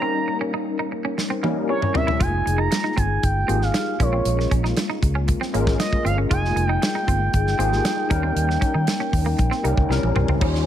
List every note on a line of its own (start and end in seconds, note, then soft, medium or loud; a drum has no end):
0.00 0.78 G3 medium
0.00 0.79 A#3 medium
0.00 0.13 C4 medium
0.00 0.79 C#4 medium
0.00 0.79 D#4 medium
0.00 0.79 A#4 medium
0.00 0.37 A#5 loud
0.28 muted clean electric guitar stroke soft
0.41 0.52 C#4 medium
0.54 0.64 D#4 medium
0.79 0.90 D#4 medium
0.92 muted clean electric guitar stroke soft
1.05 1.16 C#4 medium
1.18 muted clean electric guitar stroke soft
1.18 snare medium
1.30 1.41 C4 medium
1.42 1.67 G3 medium
1.42 1.69 A#3 medium
1.42 1.54 A#3 medium
1.42 1.68 C#4 medium
1.42 1.69 D#4 medium
1.42 1.68 A#4 medium
1.42 high tom medium
1.68 2.14 G3 medium
1.68 2.14 C4 medium
1.68 2.14 C#4 medium
1.68 2.14 E4 medium
1.68 2.14 A#4 medium
1.68 1.93 C#5 medium
1.68 muted clean electric guitar stroke soft
1.82 mid tom medium
1.94 2.05 C4 medium
1.94 2.23 E5 medium
1.94 floor tom medium
2.07 2.18 E4 medium
2.07 floor tom medium
2.20 2.40 F1 medium
2.20 3.10 G#3 medium
2.20 3.10 A#3 medium
2.20 3.11 D#4 medium
2.20 2.31 F4 medium
2.20 3.11 F4 medium
2.20 3.11 G#4 medium
2.20 2.60 G#5 medium
2.20 kick loud
2.20 closed hi-hat medium
2.46 2.66 F1 medium
2.46 muted clean electric guitar stroke soft
2.46 closed hi-hat medium
2.58 2.69 D#4 medium
2.58 3.00 A#5 loud
2.71 muted clean electric guitar stroke soft
2.71 snare loud
2.71 closed hi-hat medium
2.84 2.95 D#4 medium
2.97 3.17 G1 medium
2.97 3.08 C4 medium
2.97 3.25 G#5 loud
2.97 kick medium
2.97 closed hi-hat medium
3.23 3.43 G1 medium
3.23 3.64 G5 loud
3.23 kick medium
3.23 closed hi-hat medium
3.48 3.69 G#1 medium
3.48 3.99 A#3 medium
3.48 3.59 C4 medium
3.48 4.00 D#4 medium
3.48 3.99 F4 medium
3.48 4.00 G4 medium
3.48 4.00 G#4 medium
3.48 closed hi-hat medium
3.62 4.04 F5 medium
3.62 snare soft
3.74 muted clean electric guitar stroke soft
3.74 snare medium
3.74 closed hi-hat medium
3.99 4.20 A#1 medium
3.99 4.90 G#3 medium
3.99 4.90 A#3 medium
3.99 4.11 C#4 medium
3.99 4.90 C#4 medium
3.99 4.90 F4 medium
3.99 4.90 A#4 medium
3.99 4.52 C#5 medium
3.99 kick medium
3.99 closed hi-hat medium
4.13 4.24 C4 medium
4.25 4.45 A#1 medium
4.25 closed hi-hat medium
4.39 muted clean electric guitar stroke soft
4.39 snare soft
4.51 4.71 A#1 medium
4.51 4.62 C#4 medium
4.51 kick medium
4.51 closed hi-hat medium
4.64 4.75 D#4 medium
4.64 snare soft
4.77 snare loud
4.77 closed hi-hat medium
4.90 5.00 D#4 medium
5.03 5.33 C#2 medium
5.03 muted clean electric guitar stroke soft
5.03 kick medium
5.03 closed hi-hat medium
5.15 5.26 C#4 medium
5.28 muted clean electric guitar stroke soft
5.28 kick medium
5.28 closed hi-hat medium
5.41 5.52 C4 medium
5.41 snare soft
5.53 5.74 G#1 medium
5.53 6.21 G#3 medium
5.53 6.21 A#3 medium
5.53 5.65 A#3 medium
5.53 6.21 C#4 medium
5.53 6.21 F4 medium
5.53 6.21 A#4 medium
5.53 closed hi-hat medium
5.67 kick medium
5.67 snare soft
5.80 6.04 D#5 medium
5.80 muted clean electric guitar stroke soft
5.80 snare loud
5.80 closed hi-hat medium
5.93 kick medium
6.05 6.25 G1 medium
6.05 6.16 C4 medium
6.05 6.17 F5 medium
6.05 closed hi-hat medium
6.18 6.29 C#4 medium
6.30 6.51 F1 medium
6.30 7.20 G#3 medium
6.30 7.20 A#3 medium
6.30 7.21 D#4 medium
6.30 6.41 F4 medium
6.30 7.21 F4 medium
6.30 7.21 G#4 medium
6.30 6.67 G#5 loud
6.30 kick loud
6.30 closed hi-hat medium
6.45 snare soft
6.56 6.76 F1 medium
6.56 muted clean electric guitar stroke soft
6.56 closed hi-hat medium
6.67 6.80 D#4 medium
6.67 6.83 G5 loud
6.82 9.90 G5 loud
6.82 muted clean electric guitar stroke soft
6.82 snare loud
6.82 closed hi-hat medium
6.95 7.06 D#4 medium
7.08 7.28 G1 medium
7.08 7.19 C4 medium
7.08 kick medium
7.08 closed hi-hat medium
7.33 7.54 G1 medium
7.33 kick medium
7.33 closed hi-hat medium
7.47 snare soft
7.58 7.79 G#1 medium
7.58 8.08 A#3 medium
7.58 7.70 C4 medium
7.58 8.09 D#4 medium
7.58 8.10 F4 medium
7.58 8.10 G4 medium
7.58 8.11 G#4 medium
7.58 closed hi-hat medium
7.72 snare soft
7.85 muted clean electric guitar stroke soft
7.85 snare loud
7.85 closed hi-hat medium
8.09 8.31 D#2 medium
8.09 9.00 G3 medium
8.09 9.00 A#3 medium
8.09 9.00 C#4 medium
8.09 8.21 C#4 medium
8.09 9.00 D#4 medium
8.09 9.00 A#4 loud
8.09 kick loud
8.09 closed hi-hat medium
8.23 8.34 C4 medium
8.36 8.56 D#2 medium
8.36 closed hi-hat medium
8.49 muted clean electric guitar stroke soft
8.49 snare soft
8.61 8.72 C#4 medium
8.61 kick medium
8.61 closed hi-hat medium
8.74 8.85 D#3 medium
8.74 8.85 D#4 medium
8.87 snare loud
8.87 closed hi-hat medium
9.00 9.11 C#4 medium
9.13 9.33 D#2 medium
9.13 muted clean electric guitar stroke soft
9.13 kick medium
9.13 open hi-hat medium
9.26 9.37 A#3 medium
9.39 9.49 A#1 medium
9.39 muted clean electric guitar stroke soft
9.39 kick medium
9.39 closed hi-hat medium
9.51 9.62 C4 medium
9.51 snare soft
9.63 9.74 C2 medium
9.63 9.87 G3 medium
9.63 9.90 A#3 medium
9.63 9.88 C#4 medium
9.63 9.75 D#4 medium
9.63 9.90 D#4 medium
9.63 9.89 A#4 medium
9.63 closed hi-hat medium
9.77 9.87 C#2 medium
9.77 kick medium
9.89 10.00 C2 medium
9.89 10.34 G3 medium
9.89 10.35 C4 medium
9.89 10.35 C#4 medium
9.89 10.35 E4 medium
9.89 10.35 A#4 medium
9.89 muted clean electric guitar stroke soft
9.89 snare soft
10.03 10.13 A#1 medium
10.03 high tom medium
10.16 10.26 C2 medium
10.16 10.27 C4 medium
10.16 mid tom medium
10.28 10.38 C#2 medium
10.28 10.40 C4 medium
10.28 floor tom medium
10.40 10.66 D#2 medium
10.40 10.66 G3 medium
10.40 10.66 C#4 medium
10.40 10.66 D#4 medium
10.40 10.52 D#4 medium
10.40 10.66 F4 medium
10.40 10.66 C5 medium
10.40 kick loud
10.40 crash medium
10.55 snare soft